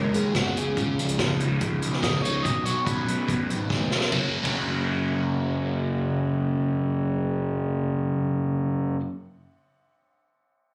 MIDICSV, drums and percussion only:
0, 0, Header, 1, 2, 480
1, 0, Start_track
1, 0, Key_signature, 6, "major"
1, 0, Tempo, 421053
1, 862, Time_signature, 4, 2, 24, 8
1, 12246, End_track
2, 0, Start_track
2, 0, Title_t, "Drums"
2, 161, Note_on_c, 9, 42, 52
2, 275, Note_off_c, 9, 42, 0
2, 397, Note_on_c, 9, 36, 93
2, 397, Note_on_c, 9, 38, 97
2, 397, Note_on_c, 9, 42, 51
2, 511, Note_off_c, 9, 36, 0
2, 511, Note_off_c, 9, 38, 0
2, 511, Note_off_c, 9, 42, 0
2, 648, Note_on_c, 9, 42, 52
2, 762, Note_off_c, 9, 42, 0
2, 876, Note_on_c, 9, 42, 48
2, 878, Note_on_c, 9, 36, 94
2, 990, Note_off_c, 9, 42, 0
2, 992, Note_off_c, 9, 36, 0
2, 1129, Note_on_c, 9, 42, 52
2, 1239, Note_off_c, 9, 42, 0
2, 1239, Note_on_c, 9, 42, 49
2, 1353, Note_off_c, 9, 42, 0
2, 1357, Note_on_c, 9, 36, 94
2, 1360, Note_on_c, 9, 38, 98
2, 1360, Note_on_c, 9, 42, 53
2, 1471, Note_off_c, 9, 36, 0
2, 1474, Note_off_c, 9, 38, 0
2, 1474, Note_off_c, 9, 42, 0
2, 1599, Note_on_c, 9, 42, 50
2, 1713, Note_off_c, 9, 42, 0
2, 1833, Note_on_c, 9, 42, 56
2, 1838, Note_on_c, 9, 36, 100
2, 1947, Note_off_c, 9, 42, 0
2, 1952, Note_off_c, 9, 36, 0
2, 2078, Note_on_c, 9, 42, 54
2, 2192, Note_off_c, 9, 42, 0
2, 2198, Note_on_c, 9, 38, 27
2, 2312, Note_off_c, 9, 38, 0
2, 2316, Note_on_c, 9, 36, 94
2, 2317, Note_on_c, 9, 38, 92
2, 2317, Note_on_c, 9, 42, 52
2, 2430, Note_off_c, 9, 36, 0
2, 2431, Note_off_c, 9, 38, 0
2, 2431, Note_off_c, 9, 42, 0
2, 2564, Note_on_c, 9, 42, 53
2, 2678, Note_off_c, 9, 42, 0
2, 2793, Note_on_c, 9, 36, 88
2, 2798, Note_on_c, 9, 42, 55
2, 2907, Note_off_c, 9, 36, 0
2, 2912, Note_off_c, 9, 42, 0
2, 3030, Note_on_c, 9, 42, 52
2, 3144, Note_off_c, 9, 42, 0
2, 3267, Note_on_c, 9, 36, 86
2, 3272, Note_on_c, 9, 42, 52
2, 3381, Note_off_c, 9, 36, 0
2, 3386, Note_off_c, 9, 42, 0
2, 3515, Note_on_c, 9, 42, 51
2, 3629, Note_off_c, 9, 42, 0
2, 3745, Note_on_c, 9, 36, 88
2, 3754, Note_on_c, 9, 42, 57
2, 3859, Note_off_c, 9, 36, 0
2, 3868, Note_off_c, 9, 42, 0
2, 3993, Note_on_c, 9, 42, 47
2, 4107, Note_off_c, 9, 42, 0
2, 4220, Note_on_c, 9, 36, 90
2, 4228, Note_on_c, 9, 38, 45
2, 4334, Note_off_c, 9, 36, 0
2, 4335, Note_on_c, 9, 47, 52
2, 4342, Note_off_c, 9, 38, 0
2, 4449, Note_off_c, 9, 47, 0
2, 4457, Note_on_c, 9, 38, 61
2, 4567, Note_off_c, 9, 38, 0
2, 4567, Note_on_c, 9, 38, 65
2, 4681, Note_off_c, 9, 38, 0
2, 4693, Note_on_c, 9, 36, 54
2, 4697, Note_on_c, 9, 51, 66
2, 4807, Note_off_c, 9, 36, 0
2, 4811, Note_off_c, 9, 51, 0
2, 5056, Note_on_c, 9, 36, 57
2, 5071, Note_on_c, 9, 51, 66
2, 5170, Note_off_c, 9, 36, 0
2, 5185, Note_off_c, 9, 51, 0
2, 12246, End_track
0, 0, End_of_file